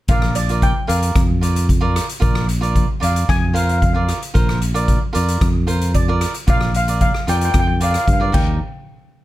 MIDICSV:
0, 0, Header, 1, 5, 480
1, 0, Start_track
1, 0, Tempo, 532387
1, 83, Time_signature, 4, 2, 24, 8
1, 8337, End_track
2, 0, Start_track
2, 0, Title_t, "Steel pan"
2, 0, Program_c, 0, 114
2, 86, Note_on_c, 0, 77, 79
2, 321, Note_on_c, 0, 74, 75
2, 332, Note_off_c, 0, 77, 0
2, 569, Note_on_c, 0, 79, 88
2, 570, Note_off_c, 0, 74, 0
2, 790, Note_off_c, 0, 79, 0
2, 797, Note_on_c, 0, 77, 66
2, 1725, Note_off_c, 0, 77, 0
2, 2740, Note_on_c, 0, 77, 68
2, 2968, Note_on_c, 0, 80, 92
2, 2980, Note_off_c, 0, 77, 0
2, 3196, Note_on_c, 0, 77, 71
2, 3213, Note_off_c, 0, 80, 0
2, 3260, Note_off_c, 0, 77, 0
2, 3271, Note_on_c, 0, 77, 54
2, 3332, Note_off_c, 0, 77, 0
2, 3343, Note_on_c, 0, 77, 57
2, 3400, Note_off_c, 0, 77, 0
2, 3410, Note_on_c, 0, 77, 57
2, 3462, Note_off_c, 0, 77, 0
2, 3472, Note_on_c, 0, 77, 55
2, 3536, Note_off_c, 0, 77, 0
2, 3548, Note_on_c, 0, 77, 49
2, 3607, Note_off_c, 0, 77, 0
2, 5364, Note_on_c, 0, 74, 71
2, 5857, Note_off_c, 0, 74, 0
2, 5859, Note_on_c, 0, 77, 89
2, 6088, Note_off_c, 0, 77, 0
2, 6099, Note_on_c, 0, 77, 83
2, 6314, Note_off_c, 0, 77, 0
2, 6325, Note_on_c, 0, 77, 81
2, 6432, Note_off_c, 0, 77, 0
2, 6576, Note_on_c, 0, 79, 88
2, 6638, Note_off_c, 0, 79, 0
2, 6648, Note_on_c, 0, 79, 57
2, 6708, Note_off_c, 0, 79, 0
2, 6718, Note_on_c, 0, 79, 70
2, 6767, Note_off_c, 0, 79, 0
2, 6778, Note_on_c, 0, 79, 63
2, 6837, Note_off_c, 0, 79, 0
2, 6847, Note_on_c, 0, 79, 82
2, 6908, Note_off_c, 0, 79, 0
2, 6918, Note_on_c, 0, 79, 68
2, 6977, Note_off_c, 0, 79, 0
2, 7066, Note_on_c, 0, 77, 71
2, 7117, Note_off_c, 0, 77, 0
2, 7131, Note_on_c, 0, 77, 57
2, 7179, Note_off_c, 0, 77, 0
2, 7189, Note_on_c, 0, 77, 65
2, 7245, Note_off_c, 0, 77, 0
2, 7258, Note_on_c, 0, 77, 50
2, 7314, Note_off_c, 0, 77, 0
2, 7329, Note_on_c, 0, 77, 64
2, 7383, Note_off_c, 0, 77, 0
2, 7393, Note_on_c, 0, 77, 56
2, 7448, Note_off_c, 0, 77, 0
2, 7519, Note_on_c, 0, 79, 72
2, 7743, Note_off_c, 0, 79, 0
2, 8337, End_track
3, 0, Start_track
3, 0, Title_t, "Cavaquinho"
3, 0, Program_c, 1, 24
3, 83, Note_on_c, 1, 65, 61
3, 93, Note_on_c, 1, 70, 56
3, 99, Note_on_c, 1, 74, 54
3, 299, Note_off_c, 1, 65, 0
3, 304, Note_off_c, 1, 70, 0
3, 305, Note_off_c, 1, 74, 0
3, 446, Note_on_c, 1, 65, 56
3, 454, Note_on_c, 1, 70, 47
3, 458, Note_on_c, 1, 74, 55
3, 661, Note_off_c, 1, 65, 0
3, 665, Note_off_c, 1, 70, 0
3, 667, Note_off_c, 1, 74, 0
3, 788, Note_on_c, 1, 65, 60
3, 792, Note_on_c, 1, 70, 61
3, 796, Note_on_c, 1, 74, 63
3, 1084, Note_off_c, 1, 65, 0
3, 1086, Note_off_c, 1, 70, 0
3, 1088, Note_off_c, 1, 74, 0
3, 1275, Note_on_c, 1, 65, 61
3, 1282, Note_on_c, 1, 70, 42
3, 1282, Note_on_c, 1, 74, 63
3, 1496, Note_off_c, 1, 65, 0
3, 1498, Note_off_c, 1, 70, 0
3, 1500, Note_off_c, 1, 74, 0
3, 1628, Note_on_c, 1, 65, 76
3, 1634, Note_on_c, 1, 70, 70
3, 1635, Note_on_c, 1, 74, 77
3, 1854, Note_off_c, 1, 65, 0
3, 1855, Note_off_c, 1, 70, 0
3, 1855, Note_off_c, 1, 74, 0
3, 1982, Note_on_c, 1, 65, 67
3, 1990, Note_on_c, 1, 70, 70
3, 1996, Note_on_c, 1, 74, 80
3, 2210, Note_off_c, 1, 65, 0
3, 2214, Note_off_c, 1, 70, 0
3, 2217, Note_off_c, 1, 74, 0
3, 2351, Note_on_c, 1, 65, 65
3, 2355, Note_on_c, 1, 70, 56
3, 2362, Note_on_c, 1, 74, 70
3, 2574, Note_off_c, 1, 65, 0
3, 2577, Note_off_c, 1, 70, 0
3, 2578, Note_off_c, 1, 74, 0
3, 2705, Note_on_c, 1, 65, 60
3, 2710, Note_on_c, 1, 70, 55
3, 2715, Note_on_c, 1, 74, 70
3, 3003, Note_off_c, 1, 65, 0
3, 3006, Note_off_c, 1, 70, 0
3, 3008, Note_off_c, 1, 74, 0
3, 3187, Note_on_c, 1, 65, 61
3, 3191, Note_on_c, 1, 70, 60
3, 3197, Note_on_c, 1, 72, 73
3, 3412, Note_off_c, 1, 65, 0
3, 3414, Note_off_c, 1, 70, 0
3, 3417, Note_off_c, 1, 72, 0
3, 3556, Note_on_c, 1, 65, 65
3, 3565, Note_on_c, 1, 70, 53
3, 3566, Note_on_c, 1, 74, 73
3, 3778, Note_off_c, 1, 65, 0
3, 3779, Note_off_c, 1, 70, 0
3, 3781, Note_off_c, 1, 74, 0
3, 3911, Note_on_c, 1, 65, 66
3, 3915, Note_on_c, 1, 70, 62
3, 3920, Note_on_c, 1, 72, 70
3, 4135, Note_off_c, 1, 65, 0
3, 4135, Note_off_c, 1, 70, 0
3, 4135, Note_off_c, 1, 72, 0
3, 4276, Note_on_c, 1, 65, 67
3, 4277, Note_on_c, 1, 70, 55
3, 4281, Note_on_c, 1, 74, 82
3, 4495, Note_off_c, 1, 70, 0
3, 4497, Note_off_c, 1, 65, 0
3, 4499, Note_off_c, 1, 74, 0
3, 4623, Note_on_c, 1, 65, 79
3, 4627, Note_on_c, 1, 70, 68
3, 4638, Note_on_c, 1, 74, 83
3, 4922, Note_off_c, 1, 65, 0
3, 4924, Note_off_c, 1, 70, 0
3, 4929, Note_off_c, 1, 74, 0
3, 5110, Note_on_c, 1, 65, 70
3, 5116, Note_on_c, 1, 70, 59
3, 5116, Note_on_c, 1, 72, 81
3, 5334, Note_off_c, 1, 65, 0
3, 5334, Note_off_c, 1, 70, 0
3, 5336, Note_off_c, 1, 72, 0
3, 5483, Note_on_c, 1, 65, 63
3, 5489, Note_on_c, 1, 70, 59
3, 5493, Note_on_c, 1, 74, 79
3, 5699, Note_off_c, 1, 65, 0
3, 5702, Note_off_c, 1, 70, 0
3, 5704, Note_off_c, 1, 74, 0
3, 5832, Note_on_c, 1, 65, 58
3, 5839, Note_on_c, 1, 70, 49
3, 5844, Note_on_c, 1, 74, 71
3, 6054, Note_off_c, 1, 65, 0
3, 6055, Note_off_c, 1, 70, 0
3, 6059, Note_off_c, 1, 74, 0
3, 6200, Note_on_c, 1, 65, 51
3, 6203, Note_on_c, 1, 70, 51
3, 6211, Note_on_c, 1, 74, 58
3, 6417, Note_off_c, 1, 65, 0
3, 6420, Note_off_c, 1, 70, 0
3, 6421, Note_off_c, 1, 74, 0
3, 6557, Note_on_c, 1, 65, 65
3, 6562, Note_on_c, 1, 70, 61
3, 6570, Note_on_c, 1, 74, 55
3, 6848, Note_off_c, 1, 65, 0
3, 6851, Note_off_c, 1, 70, 0
3, 6852, Note_off_c, 1, 74, 0
3, 7036, Note_on_c, 1, 65, 66
3, 7041, Note_on_c, 1, 70, 53
3, 7046, Note_on_c, 1, 74, 73
3, 7255, Note_off_c, 1, 65, 0
3, 7257, Note_off_c, 1, 70, 0
3, 7260, Note_off_c, 1, 74, 0
3, 7392, Note_on_c, 1, 65, 60
3, 7398, Note_on_c, 1, 70, 53
3, 7401, Note_on_c, 1, 74, 70
3, 7500, Note_off_c, 1, 65, 0
3, 7501, Note_off_c, 1, 70, 0
3, 7504, Note_on_c, 1, 63, 68
3, 7512, Note_on_c, 1, 70, 68
3, 7513, Note_on_c, 1, 67, 53
3, 7520, Note_off_c, 1, 74, 0
3, 7736, Note_off_c, 1, 63, 0
3, 7737, Note_off_c, 1, 67, 0
3, 7739, Note_off_c, 1, 70, 0
3, 8337, End_track
4, 0, Start_track
4, 0, Title_t, "Fingered electric bass"
4, 0, Program_c, 2, 33
4, 81, Note_on_c, 2, 34, 85
4, 640, Note_off_c, 2, 34, 0
4, 806, Note_on_c, 2, 41, 75
4, 991, Note_off_c, 2, 41, 0
4, 1039, Note_on_c, 2, 41, 80
4, 1785, Note_off_c, 2, 41, 0
4, 2002, Note_on_c, 2, 34, 98
4, 2561, Note_off_c, 2, 34, 0
4, 2728, Note_on_c, 2, 41, 69
4, 2913, Note_off_c, 2, 41, 0
4, 2966, Note_on_c, 2, 41, 86
4, 3709, Note_off_c, 2, 41, 0
4, 3923, Note_on_c, 2, 34, 93
4, 4481, Note_off_c, 2, 34, 0
4, 4649, Note_on_c, 2, 41, 75
4, 4833, Note_off_c, 2, 41, 0
4, 4881, Note_on_c, 2, 41, 91
4, 5625, Note_off_c, 2, 41, 0
4, 5839, Note_on_c, 2, 34, 88
4, 6398, Note_off_c, 2, 34, 0
4, 6564, Note_on_c, 2, 41, 76
4, 6749, Note_off_c, 2, 41, 0
4, 6804, Note_on_c, 2, 41, 88
4, 7175, Note_off_c, 2, 41, 0
4, 7281, Note_on_c, 2, 43, 68
4, 7497, Note_off_c, 2, 43, 0
4, 7521, Note_on_c, 2, 39, 80
4, 7744, Note_off_c, 2, 39, 0
4, 8337, End_track
5, 0, Start_track
5, 0, Title_t, "Drums"
5, 74, Note_on_c, 9, 42, 50
5, 79, Note_on_c, 9, 36, 94
5, 164, Note_off_c, 9, 42, 0
5, 169, Note_off_c, 9, 36, 0
5, 198, Note_on_c, 9, 37, 79
5, 289, Note_off_c, 9, 37, 0
5, 317, Note_on_c, 9, 42, 79
5, 407, Note_off_c, 9, 42, 0
5, 442, Note_on_c, 9, 42, 46
5, 532, Note_off_c, 9, 42, 0
5, 560, Note_on_c, 9, 42, 46
5, 561, Note_on_c, 9, 36, 66
5, 651, Note_off_c, 9, 42, 0
5, 652, Note_off_c, 9, 36, 0
5, 805, Note_on_c, 9, 42, 74
5, 895, Note_off_c, 9, 42, 0
5, 924, Note_on_c, 9, 42, 56
5, 1014, Note_off_c, 9, 42, 0
5, 1042, Note_on_c, 9, 36, 102
5, 1042, Note_on_c, 9, 37, 77
5, 1042, Note_on_c, 9, 42, 64
5, 1132, Note_off_c, 9, 36, 0
5, 1132, Note_off_c, 9, 37, 0
5, 1132, Note_off_c, 9, 42, 0
5, 1287, Note_on_c, 9, 42, 74
5, 1377, Note_off_c, 9, 42, 0
5, 1408, Note_on_c, 9, 42, 59
5, 1498, Note_off_c, 9, 42, 0
5, 1525, Note_on_c, 9, 36, 75
5, 1529, Note_on_c, 9, 42, 57
5, 1615, Note_off_c, 9, 36, 0
5, 1619, Note_off_c, 9, 42, 0
5, 1768, Note_on_c, 9, 37, 67
5, 1768, Note_on_c, 9, 42, 67
5, 1858, Note_off_c, 9, 37, 0
5, 1858, Note_off_c, 9, 42, 0
5, 1888, Note_on_c, 9, 42, 54
5, 1978, Note_off_c, 9, 42, 0
5, 2002, Note_on_c, 9, 36, 81
5, 2002, Note_on_c, 9, 42, 51
5, 2092, Note_off_c, 9, 36, 0
5, 2092, Note_off_c, 9, 42, 0
5, 2122, Note_on_c, 9, 37, 83
5, 2212, Note_off_c, 9, 37, 0
5, 2244, Note_on_c, 9, 42, 69
5, 2334, Note_off_c, 9, 42, 0
5, 2372, Note_on_c, 9, 42, 46
5, 2462, Note_off_c, 9, 42, 0
5, 2485, Note_on_c, 9, 36, 74
5, 2486, Note_on_c, 9, 42, 51
5, 2575, Note_off_c, 9, 36, 0
5, 2576, Note_off_c, 9, 42, 0
5, 2728, Note_on_c, 9, 42, 72
5, 2818, Note_off_c, 9, 42, 0
5, 2850, Note_on_c, 9, 42, 54
5, 2940, Note_off_c, 9, 42, 0
5, 2966, Note_on_c, 9, 36, 88
5, 2972, Note_on_c, 9, 37, 85
5, 2972, Note_on_c, 9, 42, 53
5, 3056, Note_off_c, 9, 36, 0
5, 3062, Note_off_c, 9, 37, 0
5, 3062, Note_off_c, 9, 42, 0
5, 3206, Note_on_c, 9, 42, 66
5, 3296, Note_off_c, 9, 42, 0
5, 3328, Note_on_c, 9, 42, 48
5, 3418, Note_off_c, 9, 42, 0
5, 3445, Note_on_c, 9, 36, 77
5, 3447, Note_on_c, 9, 42, 47
5, 3536, Note_off_c, 9, 36, 0
5, 3537, Note_off_c, 9, 42, 0
5, 3683, Note_on_c, 9, 37, 59
5, 3683, Note_on_c, 9, 42, 63
5, 3773, Note_off_c, 9, 37, 0
5, 3773, Note_off_c, 9, 42, 0
5, 3809, Note_on_c, 9, 42, 53
5, 3899, Note_off_c, 9, 42, 0
5, 3923, Note_on_c, 9, 36, 89
5, 3924, Note_on_c, 9, 42, 51
5, 4013, Note_off_c, 9, 36, 0
5, 4014, Note_off_c, 9, 42, 0
5, 4049, Note_on_c, 9, 37, 80
5, 4139, Note_off_c, 9, 37, 0
5, 4162, Note_on_c, 9, 42, 69
5, 4252, Note_off_c, 9, 42, 0
5, 4287, Note_on_c, 9, 42, 51
5, 4377, Note_off_c, 9, 42, 0
5, 4402, Note_on_c, 9, 36, 65
5, 4402, Note_on_c, 9, 42, 54
5, 4492, Note_off_c, 9, 36, 0
5, 4492, Note_off_c, 9, 42, 0
5, 4641, Note_on_c, 9, 42, 65
5, 4731, Note_off_c, 9, 42, 0
5, 4765, Note_on_c, 9, 42, 64
5, 4855, Note_off_c, 9, 42, 0
5, 4881, Note_on_c, 9, 36, 98
5, 4882, Note_on_c, 9, 37, 83
5, 4882, Note_on_c, 9, 42, 57
5, 4971, Note_off_c, 9, 36, 0
5, 4972, Note_off_c, 9, 37, 0
5, 4972, Note_off_c, 9, 42, 0
5, 5120, Note_on_c, 9, 42, 65
5, 5210, Note_off_c, 9, 42, 0
5, 5242, Note_on_c, 9, 42, 58
5, 5332, Note_off_c, 9, 42, 0
5, 5360, Note_on_c, 9, 36, 72
5, 5360, Note_on_c, 9, 42, 61
5, 5450, Note_off_c, 9, 42, 0
5, 5451, Note_off_c, 9, 36, 0
5, 5600, Note_on_c, 9, 37, 67
5, 5600, Note_on_c, 9, 42, 71
5, 5690, Note_off_c, 9, 37, 0
5, 5690, Note_off_c, 9, 42, 0
5, 5719, Note_on_c, 9, 42, 59
5, 5809, Note_off_c, 9, 42, 0
5, 5838, Note_on_c, 9, 42, 56
5, 5841, Note_on_c, 9, 36, 92
5, 5928, Note_off_c, 9, 42, 0
5, 5931, Note_off_c, 9, 36, 0
5, 5957, Note_on_c, 9, 37, 71
5, 6047, Note_off_c, 9, 37, 0
5, 6081, Note_on_c, 9, 42, 71
5, 6171, Note_off_c, 9, 42, 0
5, 6202, Note_on_c, 9, 42, 53
5, 6292, Note_off_c, 9, 42, 0
5, 6318, Note_on_c, 9, 42, 58
5, 6321, Note_on_c, 9, 36, 68
5, 6408, Note_off_c, 9, 42, 0
5, 6412, Note_off_c, 9, 36, 0
5, 6442, Note_on_c, 9, 37, 67
5, 6532, Note_off_c, 9, 37, 0
5, 6563, Note_on_c, 9, 42, 72
5, 6654, Note_off_c, 9, 42, 0
5, 6683, Note_on_c, 9, 42, 56
5, 6773, Note_off_c, 9, 42, 0
5, 6797, Note_on_c, 9, 37, 76
5, 6797, Note_on_c, 9, 42, 58
5, 6801, Note_on_c, 9, 36, 94
5, 6887, Note_off_c, 9, 37, 0
5, 6887, Note_off_c, 9, 42, 0
5, 6891, Note_off_c, 9, 36, 0
5, 7038, Note_on_c, 9, 42, 64
5, 7128, Note_off_c, 9, 42, 0
5, 7160, Note_on_c, 9, 37, 59
5, 7160, Note_on_c, 9, 42, 54
5, 7250, Note_off_c, 9, 37, 0
5, 7250, Note_off_c, 9, 42, 0
5, 7281, Note_on_c, 9, 36, 71
5, 7283, Note_on_c, 9, 42, 54
5, 7371, Note_off_c, 9, 36, 0
5, 7374, Note_off_c, 9, 42, 0
5, 7519, Note_on_c, 9, 49, 69
5, 7520, Note_on_c, 9, 36, 80
5, 7610, Note_off_c, 9, 36, 0
5, 7610, Note_off_c, 9, 49, 0
5, 8337, End_track
0, 0, End_of_file